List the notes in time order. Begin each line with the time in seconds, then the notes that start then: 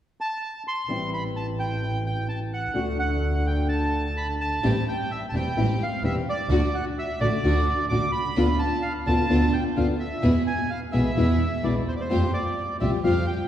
0.21 A5
0.68 C6
0.88 A1 E3 G3 C4 E4
1.13 B5
1.36 A5
1.60 G5
2.06 G5
2.29 A5
2.53 F#5
2.74 D2 D3 A3 D4 F#4
2.99 F#5
3.47 G5
3.69 A5
4.17 B5
4.41 A5
4.62 A1 E3 G3 A3 C4 E4 G4
4.88 G5
5.11 E5
5.29 E1 A5
5.33 E3 G3 A3 C4 E4 G4 G5
5.56 A1 E3 G3 A3 C4 E4 G4
5.83 F5
6.03 E1 E3 G3 A3 C4 E4 G4 E5
6.29 D5
6.49 D2 D3 A3 D4 F#4
6.75 F#5
6.99 E5
7.20 A1 D3 A3 D4 F#4 D5
7.43 D2 D3 A3 D4 F#4
7.89 A1 D3 A3 D4 F#4 D6
8.12 C2 B5
8.36 D2 D3 B3 D4 F4
8.59 A5
8.82 F5
9.06 D2 D3 B3 D4 F4 A5
9.29 D2 D3 B3 D4 F4
9.53 G5
9.76 D2 D3 B3 D4 F4 F5
10.00 E5
10.22 E2 B2 E3 G#3 B3 E4 G#4
10.47 G#5
10.70 F5
10.92 B1 B2 E3 G#3 B3 E4 G#4 E5
11.16 E2 B2 E3 G#3 B3 E4 G#4
11.63 B1 B2 E3 G#3 B3 E4 G#4 D5
11.87 D#2 C5
11.96 D5
12.00 C5
12.10 F2 F3 G3 A3 C4 F4 G4
12.33 D5
12.80 C2 F3 G3 A3 C4 F4 G4 E5
13.04 F2 F3 G3 A3 C4 F4 G4 F5
13.27 G5